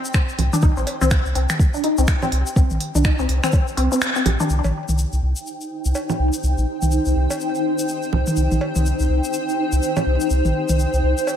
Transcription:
Already playing: G5
0.05 shaker
0.14 C4, finger snap, kick, shaker
0.29 shaker
0.38 C2, open hi-hat, low conga
0.53 D4, high tom, shaker
0.62 C2 D#4, kick, shaker
0.77 A#1 C4, shaker
0.87 open hi-hat, cowbell
1.01 C2 C4, high tom, shaker
1.11 finger snap, kick, shaker
1.26 C2, shaker
1.35 C2 C4, open hi-hat
1.49 finger snap, high tom, shaker
1.59 kick, shaker
1.74 D4, shaker
1.84 D#4, open hi-hat
1.98 C2 C4, shaker
2.07 finger snap, kick, shaker
2.22 C4, cowbell, low conga, shaker
2.32 C2, open hi-hat
2.47 shaker
2.56 C2 C4, kick, shaker
2.70 A#1, high tom, shaker
2.80 open hi-hat
2.95 C2 D4, high tom, shaker
3.05 D#4, finger snap, kick, shaker
3.19 C2 C4, shaker
3.29 C2, open hi-hat
3.43 C4, finger snap, high tom, shaker
3.52 kick, cowbell, shaker
3.68 shaker
3.77 C2 C4, open hi-hat
3.92 C4, shaker
4.01 finger snap, shaker
4.15 C4, shaker
4.26 A#1 G4, open hi-hat, low conga
4.40 D4, high tom, shaker
4.50 C2 D#4, shaker
4.64 A#1, high tom, cowbell, shaker
4.83 G5
4.89 C2, high tom, shaker
4.98 shaker
5.13 C2, shaker
5.22 C2 C5
5.36 shaker
5.47 shaker
5.61 shaker
5.85 C2, shaker
5.95 cowbell, shaker
6.09 low conga, shaker
6.19 C2
6.33 shaker
6.43 C2, shaker
6.58 A#1, shaker
6.82 C2, high tom, shaker
6.91 shaker
7.05 C2, shaker
7.16 C2
7.30 cowbell, shaker
7.41 shaker
7.55 shaker
7.79 shaker
7.88 shaker
8.03 shaker
8.13 C2, low conga
8.27 high tom, shaker
8.36 C2, shaker
8.51 A#1, high tom, shaker
8.61 cowbell
8.76 C2, high tom, shaker
8.86 shaker
9.00 C2, shaker
9.09 C2
9.24 shaker
9.33 shaker
9.49 shaker
9.72 C2, shaker
9.83 shaker
9.96 cowbell, low conga, shaker
10.06 C2
10.21 shaker
10.30 C2, shaker
10.45 A#1, high tom, shaker
10.69 C2, high tom, shaker
10.79 shaker
10.93 C2, shaker
11.03 C2
11.18 shaker
11.27 cowbell, shaker

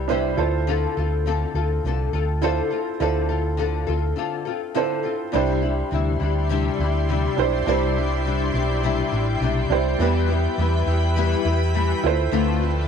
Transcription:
Already playing: C2 D4 E4 G4 B4
0.08 C3 G3 B3 D4 E4 G4 C5
0.37 D2 C4 E4 F4 A4 C5
0.67 D3 C4 F4 A4
0.97 D2 C4 F4 A4
1.26 D3 C4 F4 A4
1.54 D2 C4 F4 A4
1.84 C2 D3 C4 F4 A4
2.13 D2 C4 F4 A4
2.42 D3 C4 E4 F4 A4 C5
2.71 C4 F4 A4
3.00 D2 D3 C4 E4 F4 A4 C5
3.29 C4 F4 A4
3.57 D3 C4 F4 A4
3.87 D2 C4 F4 A4
4.16 D3 C4 F4 A4
4.45 C4 F4 A4
4.75 D3 C4 E4 F4 A4 C5
5.03 C4 F4 A4
5.32 C2 C3 G3 D4 E4 G4 C5 D5 G5 C6
5.62 G3 D4 E4
5.91 D2 C3 G3 D4 E4
6.20 D2 G3 D4 E4
6.49 C3 G3 D4 E4
6.79 D2 D4 E4
6.83 G3
7.09 C3 G3 D4 E4
7.37 B1 G3 D4 E4 G4 C5
7.66 C2 C3 G3 D4 E4 G4 C5
7.96 G3 D4 E4
8.25 C3 G3 D4 E4
8.54 B1 G3 D4 E4
8.83 C3 G3 D4 E4
9.12 A1 G3 D4 E4
9.40 B1 C3 G3 D4 E4
9.69 C2 G3 D4 E4 G4 C5
9.99 E2 E3 G3 B3 E4 G4 B4 B5
10.28 G3 B3 E4
10.58 E2 E3 G3 B3 E4
10.86 E2 G3 B3 E4
11.16 E3 G3 B3 E4
11.45 E2 G3 B3 E4
11.74 E3 G3 B3 E4
12.04 D2 F3 A3 C4 E4 F4 A4 C5 D5 A5 C6
12.32 D2 D3 A3 C4 F4
12.61 A3 C4 F4

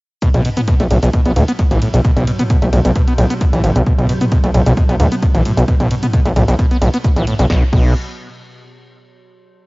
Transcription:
0.22 B2 F#3, kick, closed hi-hat, ride, shaker
0.35 B1 B2, closed hi-hat, mid tom, ride, shaker
0.45 B2, open hi-hat, ride
0.57 B3, closed hi-hat, mid tom, ride, shaker
0.68 B2, kick, closed hi-hat, ride, shaker
0.80 B1 A3, closed hi-hat, ride, shaker
0.91 B1 A2, open hi-hat, ride
1.03 B1 B2, closed hi-hat, ride, shaker
1.13 B2, kick, closed hi-hat, ride, shaker
1.25 B1 B3, closed hi-hat, ride, shaker
1.36 D2 A2, open hi-hat, ride
1.48 B3, closed hi-hat, ride, shaker
1.59 B2, kick, closed hi-hat, ride, shaker
1.71 A1 E3, closed hi-hat, mid tom, ride, shaker
1.82 A2, open hi-hat, ride
1.94 B1 B2, closed hi-hat, ride, shaker
2.04 B2, kick, closed hi-hat, ride, shaker
2.16 B1 B2, closed hi-hat, mid tom, ride, shaker
2.27 B2, open hi-hat, ride
2.39 B3, closed hi-hat, mid tom, ride, shaker
2.50 B2, kick, closed hi-hat, ride, shaker
2.62 B1 A3, closed hi-hat, ride, shaker
2.73 B1 A2, open hi-hat, ride
2.85 B1 B2, closed hi-hat, ride, shaker
2.95 B2, kick, closed hi-hat, ride, shaker
3.07 B3, closed hi-hat, ride, shaker
3.18 B1 A2, open hi-hat, ride
3.30 B3, closed hi-hat, ride, shaker
3.41 B2, kick, closed hi-hat, ride, shaker
3.53 B1 E3, closed hi-hat, mid tom, ride, shaker
3.63 A1 A2, open hi-hat, ride
3.75 B1 B2, closed hi-hat, ride, shaker
3.86 B2, kick, closed hi-hat, ride, shaker
3.98 B1 B2, closed hi-hat, mid tom, ride, shaker
4.09 B2, open hi-hat, ride
4.21 B3, closed hi-hat, mid tom, ride, shaker
4.32 B2, kick, closed hi-hat, ride, shaker
4.44 B1 A3, closed hi-hat, ride, shaker
4.54 B1 A2, open hi-hat, ride
4.66 B1 B2, closed hi-hat, ride, shaker
4.77 B2, kick, closed hi-hat, ride, shaker
4.89 B1 B3, closed hi-hat, ride, shaker
5.00 D2 A2, open hi-hat, ride
5.12 B3, closed hi-hat, ride, shaker
5.23 B2, kick, closed hi-hat, ride, shaker
5.35 A1 E3, closed hi-hat, mid tom, ride, shaker
5.45 A2, open hi-hat, ride
5.57 B1 B2, closed hi-hat, ride, shaker
5.68 B2, kick, closed hi-hat, ride, shaker
5.80 B1 B2, closed hi-hat, mid tom, ride, shaker
5.91 B2, open hi-hat, ride
6.03 B3, closed hi-hat, mid tom, ride, shaker
6.14 B2, kick, closed hi-hat, ride, shaker
6.26 B1 A3, closed hi-hat, ride, shaker
6.36 B1 A2, open hi-hat, mid tom, ride
6.48 B1 B2, closed hi-hat, ride, shaker
6.59 B2, kick, closed hi-hat, ride, shaker
6.71 B3, closed hi-hat, ride, shaker
6.82 B1 A2, open hi-hat, ride
6.94 B3, closed hi-hat, ride, shaker
7.04 B2, kick, closed hi-hat, ride, shaker
7.16 B1 E3, closed hi-hat, mid tom, ride, shaker
7.27 A2, open hi-hat, ride
7.39 B1 B2, closed hi-hat, ride, shaker
7.50 B1 B2, kick, snare
7.73 B1 B2, kick, crash

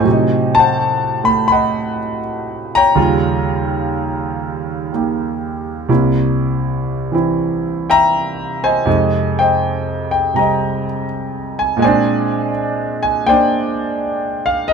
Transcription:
Already playing: C5 D#5 G#5
0.00 A2
0.04 C3 F#3
0.11 D#4
0.55 A5
0.59 C5 F#5
1.24 A3 B5
1.48 B5
1.52 D#5 F#5
2.75 C#5 G5 A#5
2.95 D#2 C#3 G3 F4
4.92 D#3 A#3 G4
5.89 C2 C3 A#3 E4
7.12 E3 C4 E4
7.90 E5 G5 A#5
8.64 C5 D#5 G#5
8.85 F2 C3 G#3 D#4
9.39 C5 D#5 G5
10.11 G5
10.34 C3 G3 C4 A#5
10.39 D#5
11.59 G#5
11.77 A#2 G#3
11.82 C4 C5 D5 G#5
11.87 D4
13.03 G#5
13.27 A#3 C5 D5 G5
13.31 D4
14.46 F5
14.68 D#5

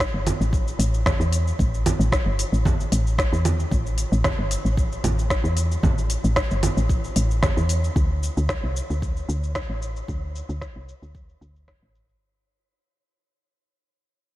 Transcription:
0.00 kick, snare, shaker
0.14 G1
0.27 open hi-hat, low conga, shaker
0.41 A1, shaker
0.53 kick, shaker
0.68 shaker
0.79 A1, open hi-hat, shaker
0.94 shaker
1.06 kick, snare, low conga, shaker
1.20 E2, shaker
1.33 open hi-hat, shaker
1.48 shaker
1.59 A1, kick, shaker
1.74 shaker
1.86 open hi-hat, low conga, shaker
1.99 A1, shaker
2.12 kick, snare, shaker
2.26 G1
2.39 open hi-hat, shaker
2.53 A1, shaker
2.65 kick, low conga, shaker
2.80 shaker
2.92 A1, open hi-hat, shaker
3.07 shaker
3.18 kick, snare, shaker
3.32 E2, shaker
3.45 open hi-hat, low conga, shaker
3.60 shaker
3.71 A1, kick, shaker
3.86 shaker
3.98 open hi-hat, shaker
4.12 A1, shaker
4.24 kick, snare, low conga, shaker
4.38 G1
4.51 open hi-hat, shaker
4.65 A1, shaker
4.77 kick, shaker
4.92 shaker
5.04 A1, open hi-hat, low conga, shaker
5.19 shaker
5.30 kick, snare, shaker
5.44 E2, shaker
5.57 open hi-hat, shaker
5.72 shaker
5.83 A1, kick, low conga, shaker
5.98 shaker
6.10 open hi-hat, shaker
6.24 A1, shaker
6.36 kick, snare, shaker
6.51 G1, shaker
6.63 open hi-hat, low conga, shaker
6.77 A1, shaker
6.89 kick, shaker
7.04 shaker
7.16 A1, open hi-hat, shaker
7.31 shaker
7.43 kick, snare, low conga, shaker
7.57 E2, shaker
7.69 open hi-hat, shaker
7.84 shaker
7.96 D2, kick, shaker
8.23 shaker
8.37 D2, shaker
8.49 kick, snare, shaker
8.63 C2
8.76 shaker
8.90 D2, shaker
9.02 kick, shaker
9.17 shaker
9.29 D2, shaker
9.44 shaker
9.55 kick, snare, shaker
9.69 A1
9.82 shaker
9.96 shaker
10.08 D2, kick, shaker
10.36 shaker
10.49 D2, shaker
10.62 kick, snare, shaker
10.76 C2
10.89 shaker
11.02 D2, shaker
11.15 kick, shaker
11.29 shaker
11.41 D2, shaker
11.56 shaker
11.68 kick, snare, shaker
11.82 A1
11.95 shaker
12.09 shaker

